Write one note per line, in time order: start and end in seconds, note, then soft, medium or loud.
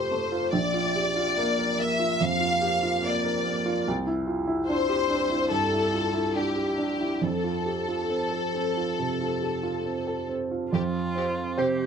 0.00 0.56 C3 soft
0.00 0.12 A3 soft
0.00 0.32 F4 soft
0.00 0.57 G4 soft
0.00 0.54 C5 medium
0.12 0.46 A3 soft
0.32 0.54 F4 soft
0.53 2.18 A#1 soft
0.53 1.78 D5 medium
0.74 1.09 F4 soft
0.96 1.17 G4 soft
1.16 1.51 F4 soft
1.37 1.72 A#3 soft
1.59 1.93 A#4 soft
1.80 2.14 A#3 soft
1.80 2.22 E5 medium
2.00 2.34 F4 soft
2.21 2.55 F2 soft
2.21 3.06 F5 medium
2.40 2.75 F4 soft
2.62 2.84 G4 soft
2.83 3.17 F4 soft
3.02 3.37 A#3 soft
3.06 3.88 D5 medium
3.24 3.58 A#4 soft
3.44 3.78 A#3 soft
3.66 3.87 F4 soft
3.88 5.49 C2 soft
4.07 4.40 E4 soft
4.27 4.48 F4 soft
4.47 4.81 E4 soft
4.68 5.02 D4 soft
4.68 5.48 C5 medium
4.89 5.23 G4 soft
5.10 5.44 D4 soft
5.30 5.64 E4 soft
5.51 5.85 G2 soft
5.51 6.37 A4 medium
5.73 6.07 E4 soft
5.94 6.15 F4 soft
6.14 6.49 E4 soft
6.36 6.70 D4 soft
6.36 7.24 G4 soft
6.56 6.92 G4 soft
6.78 7.14 D4 soft
7.00 7.23 E4 soft
7.22 8.94 F2 soft
7.22 10.30 A4 medium
7.44 7.80 F4 soft
7.66 7.89 G4 soft
7.88 8.24 F4 soft
8.10 8.46 C4 soft
8.31 8.68 A4 soft
8.54 8.90 C4 soft
8.77 9.12 F4 soft
8.99 9.34 C3 soft
9.21 9.56 F4 soft
9.42 9.64 G4 soft
9.63 9.99 F4 soft
9.86 10.21 C4 soft
10.07 10.43 A4 soft
10.29 10.64 C4 soft
10.51 10.73 F4 soft
10.73 11.86 F2 soft
10.73 11.60 F4 soft
10.73 10.82 G4 soft
11.15 11.84 C4 soft
11.15 11.25 G4 soft
11.58 11.86 C3 soft
11.58 11.66 G4 soft
11.58 11.86 G4 soft
11.58 11.86 C5 medium